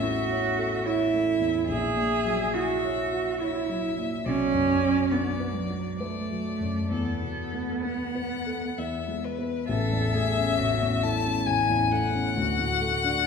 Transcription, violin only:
0, 0, Header, 1, 2, 480
1, 0, Start_track
1, 0, Key_signature, 3, "major"
1, 0, Tempo, 831025
1, 969, Time_signature, 3, 2, 24, 8
1, 969, Tempo, 863309
1, 3369, Tempo, 923077
1, 5289, Tempo, 894188
1, 7212, End_track
2, 0, Start_track
2, 0, Title_t, "Violin"
2, 0, Program_c, 0, 40
2, 0, Note_on_c, 0, 76, 65
2, 471, Note_off_c, 0, 76, 0
2, 498, Note_on_c, 0, 76, 61
2, 963, Note_off_c, 0, 76, 0
2, 968, Note_on_c, 0, 76, 56
2, 1443, Note_off_c, 0, 76, 0
2, 1451, Note_on_c, 0, 76, 58
2, 1923, Note_off_c, 0, 76, 0
2, 1932, Note_on_c, 0, 76, 57
2, 2404, Note_on_c, 0, 74, 50
2, 2412, Note_off_c, 0, 76, 0
2, 2869, Note_off_c, 0, 74, 0
2, 2872, Note_on_c, 0, 74, 50
2, 3355, Note_off_c, 0, 74, 0
2, 3373, Note_on_c, 0, 74, 50
2, 3841, Note_off_c, 0, 74, 0
2, 3852, Note_on_c, 0, 69, 42
2, 4278, Note_off_c, 0, 69, 0
2, 4330, Note_on_c, 0, 78, 63
2, 4819, Note_on_c, 0, 76, 48
2, 4827, Note_off_c, 0, 78, 0
2, 5059, Note_on_c, 0, 71, 46
2, 5066, Note_off_c, 0, 76, 0
2, 5284, Note_off_c, 0, 71, 0
2, 5287, Note_on_c, 0, 76, 83
2, 6014, Note_on_c, 0, 81, 83
2, 6022, Note_off_c, 0, 76, 0
2, 6243, Note_on_c, 0, 80, 79
2, 6251, Note_off_c, 0, 81, 0
2, 6485, Note_on_c, 0, 78, 85
2, 6493, Note_off_c, 0, 80, 0
2, 7212, Note_off_c, 0, 78, 0
2, 7212, End_track
0, 0, End_of_file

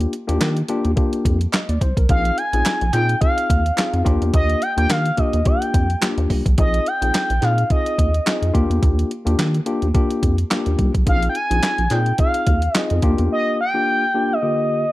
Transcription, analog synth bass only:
0, 0, Header, 1, 2, 480
1, 0, Start_track
1, 0, Key_signature, -3, "major"
1, 0, Tempo, 560748
1, 1792, Time_signature, 4, 2, 24, 8
1, 12772, End_track
2, 0, Start_track
2, 0, Title_t, "Analog synth bass"
2, 0, Program_c, 0, 38
2, 248, Note_on_c, 0, 39, 105
2, 330, Note_off_c, 0, 39, 0
2, 351, Note_on_c, 0, 51, 97
2, 539, Note_off_c, 0, 51, 0
2, 727, Note_on_c, 0, 39, 97
2, 809, Note_off_c, 0, 39, 0
2, 1071, Note_on_c, 0, 41, 97
2, 1259, Note_off_c, 0, 41, 0
2, 1446, Note_on_c, 0, 39, 81
2, 1529, Note_off_c, 0, 39, 0
2, 1552, Note_on_c, 0, 36, 94
2, 1657, Note_off_c, 0, 36, 0
2, 1685, Note_on_c, 0, 35, 80
2, 1768, Note_off_c, 0, 35, 0
2, 1793, Note_on_c, 0, 34, 122
2, 1980, Note_off_c, 0, 34, 0
2, 2167, Note_on_c, 0, 34, 105
2, 2249, Note_off_c, 0, 34, 0
2, 2411, Note_on_c, 0, 34, 92
2, 2491, Note_off_c, 0, 34, 0
2, 2512, Note_on_c, 0, 46, 99
2, 2699, Note_off_c, 0, 46, 0
2, 2994, Note_on_c, 0, 39, 95
2, 3180, Note_off_c, 0, 39, 0
2, 3368, Note_on_c, 0, 41, 86
2, 3449, Note_off_c, 0, 41, 0
2, 3473, Note_on_c, 0, 39, 106
2, 3578, Note_off_c, 0, 39, 0
2, 3609, Note_on_c, 0, 40, 85
2, 3690, Note_off_c, 0, 40, 0
2, 3713, Note_on_c, 0, 39, 115
2, 3900, Note_off_c, 0, 39, 0
2, 4086, Note_on_c, 0, 39, 110
2, 4169, Note_off_c, 0, 39, 0
2, 4191, Note_on_c, 0, 51, 93
2, 4378, Note_off_c, 0, 51, 0
2, 4567, Note_on_c, 0, 39, 89
2, 4649, Note_off_c, 0, 39, 0
2, 4915, Note_on_c, 0, 41, 92
2, 5101, Note_off_c, 0, 41, 0
2, 5287, Note_on_c, 0, 39, 89
2, 5369, Note_off_c, 0, 39, 0
2, 5393, Note_on_c, 0, 36, 92
2, 5498, Note_off_c, 0, 36, 0
2, 5528, Note_on_c, 0, 35, 88
2, 5610, Note_off_c, 0, 35, 0
2, 5633, Note_on_c, 0, 34, 127
2, 5820, Note_off_c, 0, 34, 0
2, 6008, Note_on_c, 0, 34, 103
2, 6089, Note_off_c, 0, 34, 0
2, 6250, Note_on_c, 0, 34, 88
2, 6331, Note_off_c, 0, 34, 0
2, 6356, Note_on_c, 0, 46, 108
2, 6541, Note_off_c, 0, 46, 0
2, 6835, Note_on_c, 0, 39, 96
2, 7021, Note_off_c, 0, 39, 0
2, 7209, Note_on_c, 0, 41, 91
2, 7290, Note_off_c, 0, 41, 0
2, 7316, Note_on_c, 0, 39, 99
2, 7419, Note_off_c, 0, 39, 0
2, 7446, Note_on_c, 0, 40, 89
2, 7529, Note_off_c, 0, 40, 0
2, 7556, Note_on_c, 0, 39, 122
2, 7742, Note_off_c, 0, 39, 0
2, 7929, Note_on_c, 0, 39, 109
2, 8011, Note_off_c, 0, 39, 0
2, 8034, Note_on_c, 0, 51, 100
2, 8221, Note_off_c, 0, 51, 0
2, 8410, Note_on_c, 0, 39, 85
2, 8491, Note_off_c, 0, 39, 0
2, 8755, Note_on_c, 0, 41, 90
2, 8941, Note_off_c, 0, 41, 0
2, 9130, Note_on_c, 0, 39, 87
2, 9211, Note_off_c, 0, 39, 0
2, 9235, Note_on_c, 0, 36, 90
2, 9339, Note_off_c, 0, 36, 0
2, 9369, Note_on_c, 0, 35, 81
2, 9450, Note_off_c, 0, 35, 0
2, 9473, Note_on_c, 0, 34, 120
2, 9660, Note_off_c, 0, 34, 0
2, 9850, Note_on_c, 0, 34, 110
2, 9931, Note_off_c, 0, 34, 0
2, 10087, Note_on_c, 0, 34, 90
2, 10169, Note_off_c, 0, 34, 0
2, 10193, Note_on_c, 0, 46, 93
2, 10380, Note_off_c, 0, 46, 0
2, 10675, Note_on_c, 0, 39, 86
2, 10860, Note_off_c, 0, 39, 0
2, 11051, Note_on_c, 0, 41, 90
2, 11132, Note_off_c, 0, 41, 0
2, 11153, Note_on_c, 0, 39, 96
2, 11257, Note_off_c, 0, 39, 0
2, 11291, Note_on_c, 0, 40, 91
2, 11372, Note_off_c, 0, 40, 0
2, 12772, End_track
0, 0, End_of_file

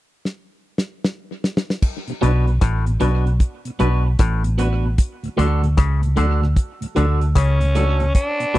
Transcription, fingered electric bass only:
0, 0, Header, 1, 2, 480
1, 0, Start_track
1, 0, Key_signature, 2, "minor"
1, 0, Tempo, 790514
1, 1108, Time_signature, 4, 2, 24, 8
1, 5213, End_track
2, 0, Start_track
2, 0, Title_t, "Fingered electric bass"
2, 0, Program_c, 0, 33
2, 1353, Note_on_c, 0, 35, 99
2, 1577, Note_off_c, 0, 35, 0
2, 1592, Note_on_c, 0, 33, 79
2, 1816, Note_off_c, 0, 33, 0
2, 1832, Note_on_c, 0, 35, 94
2, 2056, Note_off_c, 0, 35, 0
2, 2310, Note_on_c, 0, 35, 87
2, 2535, Note_off_c, 0, 35, 0
2, 2547, Note_on_c, 0, 33, 100
2, 3003, Note_off_c, 0, 33, 0
2, 3269, Note_on_c, 0, 38, 98
2, 3495, Note_off_c, 0, 38, 0
2, 3511, Note_on_c, 0, 37, 88
2, 3736, Note_off_c, 0, 37, 0
2, 3751, Note_on_c, 0, 38, 95
2, 3976, Note_off_c, 0, 38, 0
2, 4231, Note_on_c, 0, 38, 86
2, 4456, Note_off_c, 0, 38, 0
2, 4468, Note_on_c, 0, 37, 109
2, 4924, Note_off_c, 0, 37, 0
2, 5193, Note_on_c, 0, 35, 88
2, 5213, Note_off_c, 0, 35, 0
2, 5213, End_track
0, 0, End_of_file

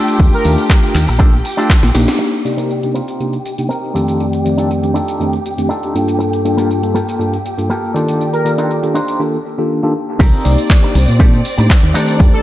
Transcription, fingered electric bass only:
0, 0, Header, 1, 2, 480
1, 0, Start_track
1, 0, Tempo, 500000
1, 193, Time_signature, 4, 2, 24, 8
1, 11927, End_track
2, 0, Start_track
2, 0, Title_t, "Fingered electric bass"
2, 0, Program_c, 0, 33
2, 189, Note_on_c, 0, 39, 97
2, 287, Note_off_c, 0, 39, 0
2, 431, Note_on_c, 0, 39, 83
2, 528, Note_off_c, 0, 39, 0
2, 910, Note_on_c, 0, 39, 92
2, 1008, Note_off_c, 0, 39, 0
2, 1039, Note_on_c, 0, 34, 82
2, 1348, Note_off_c, 0, 34, 0
2, 1758, Note_on_c, 0, 34, 94
2, 1844, Note_off_c, 0, 34, 0
2, 1872, Note_on_c, 0, 34, 94
2, 1969, Note_off_c, 0, 34, 0
2, 9792, Note_on_c, 0, 36, 94
2, 9889, Note_off_c, 0, 36, 0
2, 10035, Note_on_c, 0, 36, 89
2, 10130, Note_off_c, 0, 36, 0
2, 10512, Note_on_c, 0, 36, 88
2, 10608, Note_off_c, 0, 36, 0
2, 10638, Note_on_c, 0, 46, 81
2, 10948, Note_off_c, 0, 46, 0
2, 11119, Note_on_c, 0, 45, 78
2, 11205, Note_off_c, 0, 45, 0
2, 11356, Note_on_c, 0, 39, 97
2, 11443, Note_off_c, 0, 39, 0
2, 11713, Note_on_c, 0, 41, 95
2, 11809, Note_off_c, 0, 41, 0
2, 11927, End_track
0, 0, End_of_file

